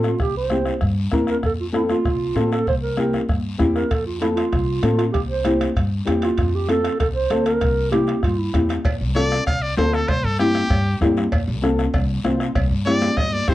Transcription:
Already playing: upright bass A2, nylon-string guitar F4 A4
0.04 clarinet F4, bombo rim, short guiro
0.19 upright bass C2, clarinet G4, bombo low, bombo rim, long guiro
0.37 clarinet C5
0.50 nylon-string guitar C4 E4 G4, bombo rim, high conga, short guiro
0.66 bombo rim, short guiro
0.81 upright bass G2, bombo low, bombo rim, long guiro
1.12 upright bass E2, nylon-string guitar C4 E4 A#4, bombo low, bombo rim, high conga, short guiro
1.27 clarinet A#4, bombo rim, short guiro
1.43 upright bass F2, clarinet A4, bombo low, bombo rim, long guiro
1.61 clarinet F4
1.73 nylon-string guitar C4 F4 A4, clarinet E4, bombo rim, high conga, short guiro
1.89 clarinet F4, bombo rim, high conga, short guiro
2.05 upright bass C2, bombo low, bombo rim, long guiro
2.35 upright bass A2, nylon-string guitar C4 F4 A4, bombo rim, high conga, short guiro
2.52 clarinet A4, bombo rim, short guiro
2.67 upright bass C2, clarinet C5, bombo low, bombo rim, long guiro
2.83 clarinet A#4
2.97 nylon-string guitar C4 E4 G4, bombo rim, high conga, short guiro
3.14 bombo rim, high conga, short guiro
3.29 upright bass G2, bombo low, bombo rim, long guiro
3.58 upright bass E2, nylon-string guitar C4 E4 G4, bombo low, bombo rim, high conga, short guiro
3.75 clarinet A#4, bombo rim, short guiro
3.91 upright bass F2, clarinet A4, bombo low, bombo rim, high timbale, long guiro
4.06 clarinet F4
4.21 nylon-string guitar C4 F4 A4, clarinet E4, bombo rim, high conga, high timbale, short guiro
4.36 clarinet F4, bombo rim, high timbale, short guiro
4.52 upright bass C2, bombo low, bombo rim, high timbale, long guiro
4.82 upright bass A2, nylon-string guitar C4 F4 A4, bombo rim, high conga, high timbale, short guiro
4.97 clarinet F4, bombo rim, high timbale, short guiro
5.13 upright bass C2, clarinet G4, bombo low, bombo rim, high timbale, long guiro
5.29 clarinet C5
5.44 nylon-string guitar C4 E4 G4, bombo rim, high conga, high timbale, short guiro
5.61 bombo rim, high conga, high timbale, short guiro
5.76 upright bass G2, bombo low, bombo rim, high timbale, long guiro
6.05 upright bass E2, nylon-string guitar C4 E4 G4, bombo rim, high conga, high timbale, low timbale, short guiro
6.22 clarinet F4, bombo rim, high timbale, short guiro
6.38 upright bass F2, bombo low, bombo rim, high timbale, long guiro
6.55 clarinet G4
6.68 nylon-string guitar C4 F4 A4, clarinet A4, bombo rim, high conga, high timbale, short guiro
6.84 bombo rim, high timbale, short guiro
7.00 upright bass C2, clarinet A4, bombo low, bombo rim, high timbale, long guiro
7.15 clarinet C5
7.30 upright bass D2, nylon-string guitar C4 F4 A4, bombo rim, high conga, high timbale, short guiro
7.46 clarinet A#4, bombo rim, high timbale, short guiro
7.61 upright bass C2, bombo low, bombo rim, high timbale, long guiro
7.91 nylon-string guitar C4 E4 G4, clarinet G4, bombo rim, high conga, high timbale, short guiro
8.07 bombo rim, high timbale, short guiro
8.23 upright bass G2, clarinet F4, bombo low, bombo rim, high timbale, long guiro
8.38 clarinet E4
8.53 upright bass E2, nylon-string guitar C4 E4 G4, bombo low, bombo rim, high conga, high timbale, short guiro
8.69 bombo rim, high timbale, short guiro
8.85 upright bass F2, bombo low, bombo rim, cowbell, long guiro
9.01 upright bass C2
9.15 nylon-string guitar C4 F4 A4, trumpet D5, bombo rim, high conga, short guiro
9.31 bombo rim, short guiro
9.46 upright bass C2, trumpet F5, bombo low, bombo rim, cowbell, long guiro
9.62 trumpet D5
9.77 upright bass D2, nylon-string guitar C4 F4 A4, trumpet C5, bombo rim, high conga, low timbale, short guiro
9.93 trumpet A4, bombo rim, short guiro
10.08 upright bass C2, trumpet C5, bombo low, bombo rim, cowbell, long guiro
10.24 upright bass G2, trumpet A4
10.39 nylon-string guitar C4 E4 G4, trumpet G4, bombo rim, high conga, short guiro
10.54 bombo rim, high conga, short guiro
10.70 upright bass G2, bombo low, bombo rim, cowbell, long guiro
11.01 upright bass G2, nylon-string guitar C4 E4 G4, bombo low, bombo rim, high conga, low conga, low timbale, short guiro
11.17 bombo rim, short guiro
11.32 upright bass F2, bombo low, bombo rim, cowbell, long guiro
11.48 upright bass C2
11.62 nylon-string guitar C4 F4 A4, bombo rim, high conga, short guiro
11.79 bombo rim, short guiro
11.94 upright bass C2, bombo low, bombo rim, cowbell, long guiro
12.25 upright bass C2, nylon-string guitar C4 F4 C5, bombo rim, high conga, low timbale, short guiro
12.40 bombo rim, short guiro
12.55 upright bass C2, bombo low, bombo rim, cowbell, long guiro
12.71 upright bass G2
12.86 nylon-string guitar C4 E4 G4, trumpet D5, bombo rim, high conga, short guiro
13.01 bombo rim, high conga, short guiro
13.17 upright bass G2, trumpet D#5, bombo low, bombo rim, cowbell, high conga, long guiro
13.33 trumpet D5, high conga
13.47 upright bass G2, nylon-string guitar C4 E4 G4, trumpet C5, bombo low, bombo rim, low conga, short guiro

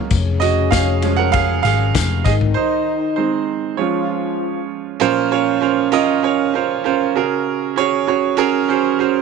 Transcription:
Already playing: grand piano F#3 G#3 A#3 C#4 F4 A#4 C#5
0.10 picked electric bass F1, french horn section C#3 C#4, kick, ride, tambourine
0.40 grand piano F#4 D#5, ride, tambourine
0.71 picked electric bass F1, grand piano G#4 F5, kick, snare, ride, tambourine
1.02 grand piano F3 G#3 C#4, ride, tambourine
1.16 grand piano A#4 F#5
1.32 grand piano G#4 F5, kick, ride, tambourine
1.63 picked electric bass G#1, grand piano G#4 F5, ride, tambourine
1.95 picked electric bass F1, kick, snare, ride, tambourine
2.24 picked electric bass G#1, french horn section D#3 D#4, grand piano G#4 D#5, kick, snare, ride, tambourine
2.41 floor tom
2.54 grand piano D#4 C5
3.16 grand piano D#3 G#3 C4 D#4 C5
3.77 grand piano F3 G#3 C#4 F4 C#5, french horn section F3 F4
5.00 grand piano A#2 F3 C#4 F4 A#4 C5
5.31 grand piano C#4 F4 A#4 C#5
5.61 grand piano C#4 F4 A#4 C5
5.92 grand piano C#4 F4 A#4 D#5
6.23 grand piano C#4 F4 A#4 C#5
6.54 grand piano C#4 F4 A#4 C5
6.84 grand piano C#4 F4 A#4 C5
7.15 grand piano C#3 C#4 F#4 G#4 A#4
7.76 grand piano C#4 F#4 G#4 C#5
8.07 grand piano C#4 F#4 G#4 C#5
8.37 grand piano C#4 F#4 G#4 A#4
8.68 grand piano C#4 F#4 G#4 C5
8.99 grand piano C#4 F#4 G#4 C5

